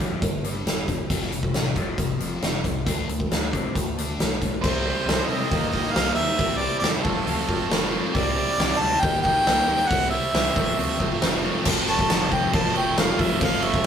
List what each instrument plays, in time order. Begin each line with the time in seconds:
0.00 fingered electric bass F2, overdriven electric guitar G2 D3 G3, kick, closed hi-hat
0.22 fingered electric bass G1, overdriven electric guitar G2 D3, kick, closed hi-hat
0.44 overdriven electric guitar G2 D3 G3, closed hi-hat
0.66 fingered electric bass E1, overdriven electric guitar G2 D3, snare, closed hi-hat
0.88 overdriven electric guitar G2 D3, kick, closed hi-hat
1.10 fingered electric bass F1, overdriven electric guitar F2 C3 F3, kick, closed hi-hat
1.22 snare
1.32 overdriven electric guitar F2 C3, closed hi-hat
1.43 kick
1.53 fingered electric bass A1, overdriven electric guitar F2 C3, snare, closed hi-hat
1.76 fingered electric bass F1, overdriven electric guitar F2 C3 F3, kick, closed hi-hat
1.98 fingered electric bass F1, overdriven electric guitar F2 C3, kick, closed hi-hat
2.18 fingered electric bass F1, overdriven electric guitar F2 C3 F3, closed hi-hat
2.41 fingered electric bass F1, overdriven electric guitar F2 C3, snare, closed hi-hat
2.64 fingered electric bass C2, overdriven electric guitar F2 C3, kick, closed hi-hat
2.86 fingered electric bass D2, overdriven electric guitar D3 A3 D4, kick, closed hi-hat
3.08 fingered electric bass D2, overdriven electric guitar D3 A3, closed hi-hat
3.20 kick
3.30 fingered electric bass D2, overdriven electric guitar D3 A3, snare, closed hi-hat
3.53 fingered electric bass C3, overdriven electric guitar D3 A3 D4, kick, closed hi-hat
3.75 fingered electric bass D2, overdriven electric guitar D3 A3, kick, closed hi-hat
3.98 overdriven electric guitar D3 A3 D4, closed hi-hat
4.18 fingered electric bass B1, overdriven electric guitar D3 A3, snare, closed hi-hat
4.42 overdriven electric guitar D3 A3, kick, closed hi-hat
4.62 fingered electric bass C2, overdriven electric guitar C3 G3 C4, twelve-string acoustic guitar C4 E4, string machine D4 C5 E5, distorted electric guitar E4, harmonica C5, kick, crash
4.66 twelve-string acoustic guitar G4 D5
4.85 overdriven electric guitar C3 G3 C4, distorted electric guitar E4
4.90 twelve-string acoustic guitar E4
5.06 fingered electric bass C2, overdriven electric guitar C3 G3 C4, twelve-string acoustic guitar C4 E4, distorted electric guitar E4, snare, open hi-hat
5.10 twelve-string acoustic guitar G4 D5
5.27 fingered electric bass C3, overdriven electric guitar C3, distorted electric guitar E4, harmonica D#5
5.31 overdriven electric guitar G3 C4
5.51 fingered electric bass D#2, overdriven electric guitar D#3 A#3 D#4, twelve-string acoustic guitar D#3 G3 A#3 D#4 G4 D#5, distorted electric guitar G3, string machine A#3 G4 D#5, kick, open hi-hat
5.70 overdriven electric guitar D#3 A#3, distorted electric guitar G3, harmonica D#5, kick
5.74 overdriven electric guitar D#4
5.93 fingered electric bass C2, overdriven electric guitar D#3 A#3, distorted electric guitar G3, twelve-string acoustic guitar A#3 D#4 G4, harmonica F5, snare, open hi-hat
5.97 overdriven electric guitar D#4, twelve-string acoustic guitar D#5
6.14 fingered electric bass D#2, overdriven electric guitar D#3 A#3, distorted electric guitar G3, harmonica E5
6.19 overdriven electric guitar D#4
6.38 fingered electric bass C2, overdriven electric guitar C3 G3 C4, string machine C4 E4 D5, twelve-string acoustic guitar C4 E4 G4, distorted electric guitar E4, kick, open hi-hat
6.42 twelve-string acoustic guitar D5
6.57 distorted electric guitar E4, harmonica D5
6.61 overdriven electric guitar C3 G3 C4
6.79 fingered electric bass E2, overdriven electric guitar C3 G3 C4, twelve-string acoustic guitar C4 E4, distorted electric guitar E4, harmonica D5
6.83 twelve-string acoustic guitar G4, snare, open hi-hat
7.03 fingered electric bass F1, overdriven electric guitar F2 C3 F3, distorted electric guitar A3 C4 F4, string machine A3 F4 C5, twelve-string acoustic guitar C4 F4 A4 C5, harmonica A4, kick
7.07 twelve-string acoustic guitar F3
7.26 fingered electric bass D2, overdriven electric guitar F2 C3 F3, distorted electric guitar A3 C4 F4, open hi-hat
7.48 fingered electric bass F1, overdriven electric guitar F2 C3 F3, distorted electric guitar A3 C4 F4, kick
7.69 fingered electric bass F1, overdriven electric guitar F2 C3 F3, distorted electric guitar A3 C4 F4, twelve-string acoustic guitar C4 F4 A4 C5, snare, open hi-hat
7.92 overdriven electric guitar F2 C3 F3, distorted electric guitar A3 C4 F4, twelve-string acoustic guitar F4 A4 C5
8.14 fingered electric bass C2, overdriven electric guitar C3 G3 C4, string machine C4 E4 D5, twelve-string acoustic guitar C4 E4 G4 D5, distorted electric guitar E4, harmonica D5, kick, open hi-hat
8.37 overdriven electric guitar C3 G3 C4, distorted electric guitar E4, twelve-string acoustic guitar G4
8.58 fingered electric bass C2, overdriven electric guitar C3 G3 C4, twelve-string acoustic guitar C4 E4 G4 D5, distorted electric guitar E4, snare, open hi-hat
8.79 fingered electric bass D2, overdriven electric guitar C3 G3 C4, distorted electric guitar E4, harmonica A5
9.00 fingered electric bass D#2, overdriven electric guitar D#3 A#3 D#4, twelve-string acoustic guitar D#3 G3 D#4, distorted electric guitar G3, string machine A#3 G4 D#5, harmonica G5, kick, open hi-hat
9.04 twelve-string acoustic guitar A#3 G4 D#5
9.22 overdriven electric guitar D#3 A#3 D#4, distorted electric guitar G3, harmonica G5, kick
9.45 fingered electric bass C2, overdriven electric guitar D#3 A#3 D#4, distorted electric guitar G3, twelve-string acoustic guitar A#3 D#4 D#5, snare, open hi-hat
9.67 fingered electric bass D#2, overdriven electric guitar D#3 A#3 D#4, distorted electric guitar G3, twelve-string acoustic guitar D#4 G4 D#5
9.71 twelve-string acoustic guitar A#3
9.88 fingered electric bass C2, overdriven electric guitar C3 G3 C4, string machine C4 E4 D5, twelve-string acoustic guitar C4 E4 G4 D5, distorted electric guitar E4, harmonica F#5, kick, open hi-hat
10.10 overdriven electric guitar C3 G3 C4, distorted electric guitar E4, twelve-string acoustic guitar E4 G4 D5, harmonica E5
10.33 fingered electric bass C2, overdriven electric guitar C3 G3 C4, twelve-string acoustic guitar C4 E4 G4 D5, distorted electric guitar E4, snare, open hi-hat
10.56 fingered electric bass F1, overdriven electric guitar F2 C3 F3, twelve-string acoustic guitar F3 C4 F4 A4 C5, distorted electric guitar A3 C4, string machine A3 F4 C5, kick
10.77 fingered electric bass D2, overdriven electric guitar F2 C3 F3, distorted electric guitar A3 C4, open hi-hat
10.98 fingered electric bass F1, overdriven electric guitar F2 C3 F3, distorted electric guitar A3 C4, kick
11.22 fingered electric bass F1, overdriven electric guitar F2 C3 F3, distorted electric guitar A3 C4, twelve-string acoustic guitar C4 F4 A4 C5, snare, open hi-hat
11.43 overdriven electric guitar F2 C3 F3, distorted electric guitar A3 C4, twelve-string acoustic guitar F4 A4 C5
11.65 fingered electric bass F1, overdriven electric guitar F2 C3 F3 A3 C4 F4, distorted electric guitar F3, string machine A3 F4 C5, kick, crash
11.69 overdriven electric guitar F3
11.87 fingered electric bass F1, distorted electric guitar A3, harmonica A5, crash
11.99 kick
12.09 fingered electric bass F1, distorted electric guitar F3, snare, crash
12.30 distorted electric guitar C4, harmonica G5, kick, crash
12.52 fingered electric bass F1, overdriven electric guitar F2 C3 F3, harmonica A5, kick, crash
12.75 fingered electric bass F1, distorted electric guitar A3, harmonica G5, crash
12.96 fingered electric bass F1, distorted electric guitar C4, harmonica F5, snare, crash
13.18 fingered electric bass F1, distorted electric guitar F4, harmonica E5, kick, crash
13.41 fingered electric bass F1, overdriven electric guitar F2 C3 F3 A3 C4 F4, distorted electric guitar F3, harmonica F5, kick, crash
13.45 overdriven electric guitar F3
13.52 snare
13.62 fingered electric bass F1, distorted electric guitar A3, harmonica E5, crash
13.74 kick